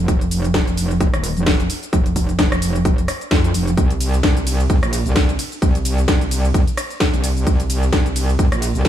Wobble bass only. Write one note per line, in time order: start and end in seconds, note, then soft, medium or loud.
0.08 0.53 F1 loud
0.54 0.99 F1 loud
1.01 1.11 F1 medium
1.13 1.35 D#1 loud
1.37 1.45 F1 loud
1.47 1.68 F1 loud
1.93 2.37 F1 loud
2.39 2.84 F1 loud
2.85 3.07 F1 loud
3.31 3.53 F2 loud
3.54 3.76 F1 loud
3.77 4.22 C2 loud
4.24 4.68 C2 loud
4.70 4.81 C2 loud
4.83 5.04 A#1 loud
5.06 5.14 C2 loud
5.16 5.37 C2 loud
5.62 6.07 C2 loud
6.08 6.53 C2 loud
6.54 6.65 C2 loud
7.14 7.45 C2 loud
7.47 7.91 C2 loud
7.93 8.37 C2 loud
8.39 8.50 C2 loud
8.52 8.73 A#1 loud
8.75 8.84 C2 loud
8.85 8.88 C2 loud